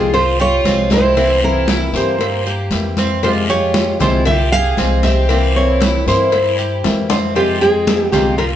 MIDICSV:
0, 0, Header, 1, 8, 480
1, 0, Start_track
1, 0, Key_signature, -4, "minor"
1, 0, Tempo, 515907
1, 1084, Time_signature, 4, 2, 24, 8
1, 7962, End_track
2, 0, Start_track
2, 0, Title_t, "Nylon-string guitar"
2, 0, Program_c, 0, 24
2, 0, Note_on_c, 0, 68, 90
2, 131, Note_on_c, 0, 72, 97
2, 137, Note_off_c, 0, 68, 0
2, 375, Note_off_c, 0, 72, 0
2, 383, Note_on_c, 0, 73, 107
2, 861, Note_off_c, 0, 73, 0
2, 865, Note_on_c, 0, 72, 112
2, 1302, Note_off_c, 0, 72, 0
2, 1343, Note_on_c, 0, 70, 101
2, 1781, Note_off_c, 0, 70, 0
2, 1828, Note_on_c, 0, 67, 83
2, 2738, Note_off_c, 0, 67, 0
2, 3013, Note_on_c, 0, 72, 101
2, 3076, Note_off_c, 0, 72, 0
2, 3253, Note_on_c, 0, 73, 107
2, 3731, Note_off_c, 0, 73, 0
2, 3735, Note_on_c, 0, 72, 93
2, 3967, Note_off_c, 0, 72, 0
2, 3970, Note_on_c, 0, 76, 104
2, 4205, Note_off_c, 0, 76, 0
2, 4208, Note_on_c, 0, 77, 113
2, 4686, Note_off_c, 0, 77, 0
2, 4690, Note_on_c, 0, 76, 112
2, 5133, Note_off_c, 0, 76, 0
2, 5175, Note_on_c, 0, 73, 94
2, 5656, Note_off_c, 0, 73, 0
2, 5660, Note_on_c, 0, 72, 86
2, 6575, Note_off_c, 0, 72, 0
2, 6850, Note_on_c, 0, 67, 92
2, 7070, Note_off_c, 0, 67, 0
2, 7086, Note_on_c, 0, 68, 92
2, 7449, Note_off_c, 0, 68, 0
2, 7449, Note_on_c, 0, 67, 92
2, 7554, Note_off_c, 0, 67, 0
2, 7558, Note_on_c, 0, 67, 89
2, 7784, Note_off_c, 0, 67, 0
2, 7796, Note_on_c, 0, 70, 100
2, 7862, Note_off_c, 0, 70, 0
2, 7962, End_track
3, 0, Start_track
3, 0, Title_t, "Cuban tres"
3, 0, Program_c, 1, 25
3, 0, Note_on_c, 1, 65, 75
3, 351, Note_off_c, 1, 65, 0
3, 369, Note_on_c, 1, 67, 84
3, 599, Note_off_c, 1, 67, 0
3, 610, Note_on_c, 1, 60, 84
3, 1073, Note_off_c, 1, 60, 0
3, 1089, Note_on_c, 1, 60, 91
3, 1552, Note_off_c, 1, 60, 0
3, 1573, Note_on_c, 1, 64, 73
3, 1801, Note_off_c, 1, 64, 0
3, 1818, Note_on_c, 1, 72, 76
3, 2277, Note_off_c, 1, 72, 0
3, 2293, Note_on_c, 1, 67, 82
3, 2754, Note_off_c, 1, 67, 0
3, 2778, Note_on_c, 1, 60, 98
3, 3004, Note_off_c, 1, 60, 0
3, 3018, Note_on_c, 1, 65, 82
3, 3244, Note_off_c, 1, 65, 0
3, 3252, Note_on_c, 1, 67, 91
3, 3713, Note_off_c, 1, 67, 0
3, 3733, Note_on_c, 1, 65, 80
3, 4194, Note_off_c, 1, 65, 0
3, 4219, Note_on_c, 1, 67, 81
3, 4444, Note_off_c, 1, 67, 0
3, 4453, Note_on_c, 1, 60, 80
3, 4914, Note_off_c, 1, 60, 0
3, 4933, Note_on_c, 1, 60, 87
3, 5394, Note_off_c, 1, 60, 0
3, 5415, Note_on_c, 1, 64, 79
3, 5642, Note_off_c, 1, 64, 0
3, 5653, Note_on_c, 1, 72, 76
3, 6114, Note_off_c, 1, 72, 0
3, 6127, Note_on_c, 1, 67, 81
3, 6591, Note_off_c, 1, 67, 0
3, 6607, Note_on_c, 1, 60, 85
3, 6838, Note_off_c, 1, 60, 0
3, 6846, Note_on_c, 1, 65, 75
3, 7078, Note_off_c, 1, 65, 0
3, 7082, Note_on_c, 1, 79, 85
3, 7549, Note_off_c, 1, 79, 0
3, 7567, Note_on_c, 1, 65, 77
3, 7962, Note_off_c, 1, 65, 0
3, 7962, End_track
4, 0, Start_track
4, 0, Title_t, "Violin section"
4, 0, Program_c, 2, 48
4, 0, Note_on_c, 2, 60, 84
4, 108, Note_off_c, 2, 60, 0
4, 128, Note_on_c, 2, 65, 86
4, 349, Note_off_c, 2, 65, 0
4, 365, Note_on_c, 2, 65, 95
4, 811, Note_off_c, 2, 65, 0
4, 860, Note_on_c, 2, 64, 90
4, 1299, Note_off_c, 2, 64, 0
4, 1353, Note_on_c, 2, 64, 89
4, 1786, Note_off_c, 2, 64, 0
4, 1825, Note_on_c, 2, 58, 79
4, 2737, Note_off_c, 2, 58, 0
4, 3015, Note_on_c, 2, 65, 70
4, 3120, Note_off_c, 2, 65, 0
4, 3235, Note_on_c, 2, 65, 85
4, 3685, Note_off_c, 2, 65, 0
4, 3732, Note_on_c, 2, 64, 79
4, 3951, Note_off_c, 2, 64, 0
4, 3981, Note_on_c, 2, 67, 91
4, 4196, Note_off_c, 2, 67, 0
4, 4214, Note_on_c, 2, 68, 90
4, 4655, Note_off_c, 2, 68, 0
4, 4691, Note_on_c, 2, 67, 88
4, 5134, Note_off_c, 2, 67, 0
4, 5174, Note_on_c, 2, 64, 87
4, 5616, Note_off_c, 2, 64, 0
4, 5651, Note_on_c, 2, 64, 80
4, 6570, Note_off_c, 2, 64, 0
4, 6844, Note_on_c, 2, 60, 66
4, 7067, Note_off_c, 2, 60, 0
4, 7077, Note_on_c, 2, 60, 77
4, 7412, Note_off_c, 2, 60, 0
4, 7412, Note_on_c, 2, 59, 77
4, 7527, Note_off_c, 2, 59, 0
4, 7557, Note_on_c, 2, 58, 78
4, 7784, Note_off_c, 2, 58, 0
4, 7803, Note_on_c, 2, 65, 80
4, 7911, Note_off_c, 2, 65, 0
4, 7962, End_track
5, 0, Start_track
5, 0, Title_t, "Steel-string acoustic guitar"
5, 0, Program_c, 3, 25
5, 0, Note_on_c, 3, 53, 60
5, 0, Note_on_c, 3, 56, 57
5, 0, Note_on_c, 3, 60, 62
5, 0, Note_on_c, 3, 67, 69
5, 113, Note_off_c, 3, 67, 0
5, 116, Note_off_c, 3, 60, 0
5, 117, Note_off_c, 3, 56, 0
5, 118, Note_off_c, 3, 53, 0
5, 601, Note_on_c, 3, 53, 62
5, 606, Note_on_c, 3, 56, 58
5, 611, Note_on_c, 3, 60, 62
5, 615, Note_on_c, 3, 67, 64
5, 1073, Note_off_c, 3, 53, 0
5, 1075, Note_off_c, 3, 56, 0
5, 1077, Note_on_c, 3, 48, 67
5, 1078, Note_off_c, 3, 60, 0
5, 1080, Note_off_c, 3, 67, 0
5, 1081, Note_on_c, 3, 52, 75
5, 1085, Note_on_c, 3, 58, 87
5, 1090, Note_on_c, 3, 60, 83
5, 1093, Note_on_c, 3, 64, 91
5, 1311, Note_off_c, 3, 48, 0
5, 1312, Note_off_c, 3, 64, 0
5, 1313, Note_off_c, 3, 52, 0
5, 1315, Note_off_c, 3, 58, 0
5, 1315, Note_off_c, 3, 60, 0
5, 1323, Note_on_c, 3, 64, 71
5, 1326, Note_on_c, 3, 60, 70
5, 1332, Note_on_c, 3, 58, 64
5, 1337, Note_on_c, 3, 52, 63
5, 1788, Note_off_c, 3, 64, 0
5, 1791, Note_off_c, 3, 60, 0
5, 1798, Note_off_c, 3, 58, 0
5, 1799, Note_on_c, 3, 64, 74
5, 1801, Note_off_c, 3, 52, 0
5, 1802, Note_on_c, 3, 60, 68
5, 1810, Note_on_c, 3, 58, 60
5, 1811, Note_on_c, 3, 52, 63
5, 2030, Note_off_c, 3, 52, 0
5, 2031, Note_off_c, 3, 58, 0
5, 2031, Note_off_c, 3, 60, 0
5, 2032, Note_off_c, 3, 64, 0
5, 2519, Note_on_c, 3, 52, 59
5, 2524, Note_on_c, 3, 58, 61
5, 2527, Note_on_c, 3, 60, 62
5, 2530, Note_on_c, 3, 64, 65
5, 2992, Note_off_c, 3, 52, 0
5, 2994, Note_off_c, 3, 58, 0
5, 2996, Note_off_c, 3, 60, 0
5, 2997, Note_off_c, 3, 64, 0
5, 3005, Note_on_c, 3, 48, 75
5, 3012, Note_on_c, 3, 53, 74
5, 3013, Note_on_c, 3, 56, 88
5, 3018, Note_on_c, 3, 60, 79
5, 3021, Note_on_c, 3, 67, 84
5, 3231, Note_off_c, 3, 67, 0
5, 3234, Note_off_c, 3, 48, 0
5, 3238, Note_off_c, 3, 53, 0
5, 3239, Note_off_c, 3, 56, 0
5, 3241, Note_off_c, 3, 60, 0
5, 3242, Note_on_c, 3, 67, 76
5, 3253, Note_on_c, 3, 56, 65
5, 3258, Note_on_c, 3, 53, 62
5, 3705, Note_off_c, 3, 67, 0
5, 3716, Note_off_c, 3, 56, 0
5, 3716, Note_on_c, 3, 67, 77
5, 3721, Note_off_c, 3, 53, 0
5, 3723, Note_on_c, 3, 60, 70
5, 3727, Note_on_c, 3, 56, 66
5, 3733, Note_on_c, 3, 53, 51
5, 3950, Note_off_c, 3, 67, 0
5, 3954, Note_off_c, 3, 60, 0
5, 3955, Note_off_c, 3, 53, 0
5, 3956, Note_off_c, 3, 56, 0
5, 4440, Note_on_c, 3, 53, 61
5, 4449, Note_on_c, 3, 56, 64
5, 4451, Note_on_c, 3, 60, 65
5, 4457, Note_on_c, 3, 67, 67
5, 4912, Note_off_c, 3, 53, 0
5, 4916, Note_off_c, 3, 56, 0
5, 4917, Note_off_c, 3, 60, 0
5, 4921, Note_off_c, 3, 67, 0
5, 4925, Note_on_c, 3, 48, 76
5, 4931, Note_on_c, 3, 52, 72
5, 4933, Note_on_c, 3, 58, 87
5, 4935, Note_on_c, 3, 60, 82
5, 4940, Note_on_c, 3, 64, 79
5, 5151, Note_off_c, 3, 64, 0
5, 5155, Note_off_c, 3, 48, 0
5, 5157, Note_off_c, 3, 52, 0
5, 5158, Note_off_c, 3, 58, 0
5, 5159, Note_off_c, 3, 60, 0
5, 5163, Note_on_c, 3, 64, 70
5, 5170, Note_on_c, 3, 60, 73
5, 5176, Note_on_c, 3, 58, 64
5, 5180, Note_on_c, 3, 52, 60
5, 5633, Note_off_c, 3, 64, 0
5, 5637, Note_off_c, 3, 60, 0
5, 5640, Note_off_c, 3, 58, 0
5, 5642, Note_off_c, 3, 52, 0
5, 5643, Note_on_c, 3, 64, 73
5, 5648, Note_on_c, 3, 60, 62
5, 5653, Note_on_c, 3, 58, 66
5, 5657, Note_on_c, 3, 52, 54
5, 5873, Note_off_c, 3, 64, 0
5, 5876, Note_off_c, 3, 60, 0
5, 5879, Note_off_c, 3, 58, 0
5, 5880, Note_off_c, 3, 52, 0
5, 6365, Note_on_c, 3, 52, 61
5, 6371, Note_on_c, 3, 58, 61
5, 6373, Note_on_c, 3, 60, 59
5, 6376, Note_on_c, 3, 64, 60
5, 6835, Note_off_c, 3, 52, 0
5, 6838, Note_off_c, 3, 58, 0
5, 6839, Note_off_c, 3, 60, 0
5, 6841, Note_off_c, 3, 64, 0
5, 6844, Note_on_c, 3, 48, 79
5, 6848, Note_on_c, 3, 53, 78
5, 6851, Note_on_c, 3, 56, 72
5, 6853, Note_on_c, 3, 60, 87
5, 6859, Note_on_c, 3, 67, 83
5, 7073, Note_off_c, 3, 60, 0
5, 7075, Note_off_c, 3, 48, 0
5, 7076, Note_off_c, 3, 53, 0
5, 7078, Note_off_c, 3, 56, 0
5, 7082, Note_off_c, 3, 67, 0
5, 7084, Note_on_c, 3, 60, 66
5, 7089, Note_on_c, 3, 56, 61
5, 7092, Note_on_c, 3, 53, 57
5, 7549, Note_off_c, 3, 60, 0
5, 7551, Note_off_c, 3, 56, 0
5, 7553, Note_on_c, 3, 67, 71
5, 7556, Note_off_c, 3, 53, 0
5, 7560, Note_on_c, 3, 60, 63
5, 7562, Note_on_c, 3, 56, 63
5, 7567, Note_on_c, 3, 53, 57
5, 7783, Note_off_c, 3, 53, 0
5, 7786, Note_off_c, 3, 67, 0
5, 7787, Note_off_c, 3, 56, 0
5, 7787, Note_off_c, 3, 60, 0
5, 7962, End_track
6, 0, Start_track
6, 0, Title_t, "Upright bass"
6, 0, Program_c, 4, 32
6, 0, Note_on_c, 4, 36, 97
6, 567, Note_off_c, 4, 36, 0
6, 598, Note_on_c, 4, 36, 93
6, 1740, Note_off_c, 4, 36, 0
6, 1796, Note_on_c, 4, 43, 100
6, 2483, Note_off_c, 4, 43, 0
6, 2514, Note_on_c, 4, 41, 92
6, 3657, Note_off_c, 4, 41, 0
6, 3723, Note_on_c, 4, 36, 97
6, 4406, Note_off_c, 4, 36, 0
6, 4444, Note_on_c, 4, 36, 97
6, 5583, Note_off_c, 4, 36, 0
6, 5642, Note_on_c, 4, 43, 101
6, 6326, Note_off_c, 4, 43, 0
6, 6362, Note_on_c, 4, 41, 89
6, 7502, Note_off_c, 4, 41, 0
6, 7554, Note_on_c, 4, 36, 94
6, 7962, Note_off_c, 4, 36, 0
6, 7962, End_track
7, 0, Start_track
7, 0, Title_t, "Muted steel-string acoustic guitar strokes"
7, 127, Note_on_c, 9, 29, 68
7, 220, Note_off_c, 9, 29, 0
7, 2037, Note_on_c, 9, 29, 66
7, 2130, Note_off_c, 9, 29, 0
7, 3964, Note_on_c, 9, 29, 69
7, 4057, Note_off_c, 9, 29, 0
7, 5891, Note_on_c, 9, 29, 71
7, 5984, Note_off_c, 9, 29, 0
7, 7793, Note_on_c, 9, 29, 72
7, 7886, Note_off_c, 9, 29, 0
7, 7962, End_track
8, 0, Start_track
8, 0, Title_t, "Drums"
8, 124, Note_on_c, 9, 74, 73
8, 127, Note_on_c, 9, 56, 106
8, 132, Note_on_c, 9, 63, 41
8, 217, Note_off_c, 9, 74, 0
8, 221, Note_off_c, 9, 56, 0
8, 225, Note_off_c, 9, 63, 0
8, 374, Note_on_c, 9, 63, 38
8, 467, Note_off_c, 9, 63, 0
8, 607, Note_on_c, 9, 63, 94
8, 608, Note_on_c, 9, 56, 73
8, 611, Note_on_c, 9, 73, 73
8, 700, Note_off_c, 9, 63, 0
8, 701, Note_off_c, 9, 56, 0
8, 704, Note_off_c, 9, 73, 0
8, 837, Note_on_c, 9, 73, 76
8, 845, Note_on_c, 9, 63, 97
8, 853, Note_on_c, 9, 56, 72
8, 930, Note_off_c, 9, 73, 0
8, 938, Note_off_c, 9, 63, 0
8, 946, Note_off_c, 9, 56, 0
8, 1073, Note_on_c, 9, 74, 80
8, 1077, Note_on_c, 9, 63, 36
8, 1088, Note_on_c, 9, 56, 106
8, 1166, Note_off_c, 9, 74, 0
8, 1170, Note_off_c, 9, 63, 0
8, 1182, Note_off_c, 9, 56, 0
8, 1325, Note_on_c, 9, 63, 37
8, 1418, Note_off_c, 9, 63, 0
8, 1561, Note_on_c, 9, 63, 97
8, 1562, Note_on_c, 9, 73, 84
8, 1575, Note_on_c, 9, 56, 74
8, 1654, Note_off_c, 9, 63, 0
8, 1655, Note_off_c, 9, 73, 0
8, 1668, Note_off_c, 9, 56, 0
8, 1799, Note_on_c, 9, 63, 37
8, 1801, Note_on_c, 9, 73, 74
8, 1892, Note_off_c, 9, 63, 0
8, 1894, Note_off_c, 9, 73, 0
8, 2033, Note_on_c, 9, 74, 77
8, 2045, Note_on_c, 9, 63, 40
8, 2053, Note_on_c, 9, 56, 115
8, 2126, Note_off_c, 9, 74, 0
8, 2138, Note_off_c, 9, 63, 0
8, 2146, Note_off_c, 9, 56, 0
8, 2281, Note_on_c, 9, 63, 36
8, 2374, Note_off_c, 9, 63, 0
8, 2518, Note_on_c, 9, 73, 75
8, 2520, Note_on_c, 9, 63, 90
8, 2531, Note_on_c, 9, 56, 79
8, 2611, Note_off_c, 9, 73, 0
8, 2613, Note_off_c, 9, 63, 0
8, 2624, Note_off_c, 9, 56, 0
8, 2762, Note_on_c, 9, 63, 89
8, 2762, Note_on_c, 9, 73, 78
8, 2772, Note_on_c, 9, 56, 72
8, 2855, Note_off_c, 9, 63, 0
8, 2855, Note_off_c, 9, 73, 0
8, 2865, Note_off_c, 9, 56, 0
8, 3002, Note_on_c, 9, 63, 39
8, 3004, Note_on_c, 9, 74, 77
8, 3007, Note_on_c, 9, 56, 105
8, 3095, Note_off_c, 9, 63, 0
8, 3097, Note_off_c, 9, 74, 0
8, 3100, Note_off_c, 9, 56, 0
8, 3246, Note_on_c, 9, 63, 36
8, 3339, Note_off_c, 9, 63, 0
8, 3481, Note_on_c, 9, 63, 105
8, 3484, Note_on_c, 9, 56, 76
8, 3491, Note_on_c, 9, 73, 77
8, 3574, Note_off_c, 9, 63, 0
8, 3577, Note_off_c, 9, 56, 0
8, 3584, Note_off_c, 9, 73, 0
8, 3721, Note_on_c, 9, 73, 78
8, 3725, Note_on_c, 9, 56, 71
8, 3726, Note_on_c, 9, 63, 35
8, 3726, Note_on_c, 9, 64, 91
8, 3814, Note_off_c, 9, 73, 0
8, 3818, Note_off_c, 9, 56, 0
8, 3819, Note_off_c, 9, 63, 0
8, 3819, Note_off_c, 9, 64, 0
8, 3959, Note_on_c, 9, 56, 121
8, 3962, Note_on_c, 9, 74, 71
8, 3971, Note_on_c, 9, 63, 39
8, 3971, Note_on_c, 9, 64, 80
8, 4052, Note_off_c, 9, 56, 0
8, 4055, Note_off_c, 9, 74, 0
8, 4064, Note_off_c, 9, 63, 0
8, 4064, Note_off_c, 9, 64, 0
8, 4213, Note_on_c, 9, 63, 37
8, 4306, Note_off_c, 9, 63, 0
8, 4442, Note_on_c, 9, 63, 86
8, 4448, Note_on_c, 9, 56, 81
8, 4448, Note_on_c, 9, 73, 75
8, 4535, Note_off_c, 9, 63, 0
8, 4541, Note_off_c, 9, 56, 0
8, 4541, Note_off_c, 9, 73, 0
8, 4680, Note_on_c, 9, 63, 95
8, 4681, Note_on_c, 9, 56, 72
8, 4685, Note_on_c, 9, 73, 70
8, 4774, Note_off_c, 9, 56, 0
8, 4774, Note_off_c, 9, 63, 0
8, 4778, Note_off_c, 9, 73, 0
8, 4922, Note_on_c, 9, 56, 111
8, 4923, Note_on_c, 9, 74, 80
8, 4929, Note_on_c, 9, 63, 36
8, 5015, Note_off_c, 9, 56, 0
8, 5016, Note_off_c, 9, 74, 0
8, 5022, Note_off_c, 9, 63, 0
8, 5169, Note_on_c, 9, 63, 34
8, 5263, Note_off_c, 9, 63, 0
8, 5402, Note_on_c, 9, 56, 74
8, 5411, Note_on_c, 9, 63, 105
8, 5411, Note_on_c, 9, 73, 80
8, 5495, Note_off_c, 9, 56, 0
8, 5504, Note_off_c, 9, 63, 0
8, 5504, Note_off_c, 9, 73, 0
8, 5653, Note_on_c, 9, 63, 39
8, 5653, Note_on_c, 9, 73, 82
8, 5746, Note_off_c, 9, 73, 0
8, 5747, Note_off_c, 9, 63, 0
8, 5883, Note_on_c, 9, 56, 112
8, 5896, Note_on_c, 9, 74, 71
8, 5902, Note_on_c, 9, 63, 39
8, 5976, Note_off_c, 9, 56, 0
8, 5989, Note_off_c, 9, 74, 0
8, 5995, Note_off_c, 9, 63, 0
8, 6140, Note_on_c, 9, 63, 37
8, 6233, Note_off_c, 9, 63, 0
8, 6367, Note_on_c, 9, 56, 75
8, 6367, Note_on_c, 9, 60, 88
8, 6373, Note_on_c, 9, 73, 75
8, 6376, Note_on_c, 9, 63, 88
8, 6460, Note_off_c, 9, 56, 0
8, 6460, Note_off_c, 9, 60, 0
8, 6466, Note_off_c, 9, 73, 0
8, 6470, Note_off_c, 9, 63, 0
8, 6603, Note_on_c, 9, 56, 71
8, 6603, Note_on_c, 9, 61, 102
8, 6606, Note_on_c, 9, 63, 90
8, 6609, Note_on_c, 9, 73, 76
8, 6696, Note_off_c, 9, 56, 0
8, 6696, Note_off_c, 9, 61, 0
8, 6699, Note_off_c, 9, 63, 0
8, 6702, Note_off_c, 9, 73, 0
8, 6842, Note_on_c, 9, 74, 78
8, 6850, Note_on_c, 9, 56, 107
8, 6850, Note_on_c, 9, 63, 37
8, 6935, Note_off_c, 9, 74, 0
8, 6943, Note_off_c, 9, 56, 0
8, 6943, Note_off_c, 9, 63, 0
8, 7092, Note_on_c, 9, 63, 39
8, 7185, Note_off_c, 9, 63, 0
8, 7322, Note_on_c, 9, 73, 83
8, 7325, Note_on_c, 9, 63, 101
8, 7331, Note_on_c, 9, 56, 76
8, 7415, Note_off_c, 9, 73, 0
8, 7418, Note_off_c, 9, 63, 0
8, 7424, Note_off_c, 9, 56, 0
8, 7559, Note_on_c, 9, 73, 76
8, 7564, Note_on_c, 9, 63, 40
8, 7564, Note_on_c, 9, 64, 91
8, 7570, Note_on_c, 9, 56, 68
8, 7652, Note_off_c, 9, 73, 0
8, 7657, Note_off_c, 9, 63, 0
8, 7657, Note_off_c, 9, 64, 0
8, 7663, Note_off_c, 9, 56, 0
8, 7797, Note_on_c, 9, 63, 37
8, 7800, Note_on_c, 9, 74, 73
8, 7803, Note_on_c, 9, 56, 110
8, 7890, Note_off_c, 9, 63, 0
8, 7893, Note_off_c, 9, 74, 0
8, 7896, Note_off_c, 9, 56, 0
8, 7962, End_track
0, 0, End_of_file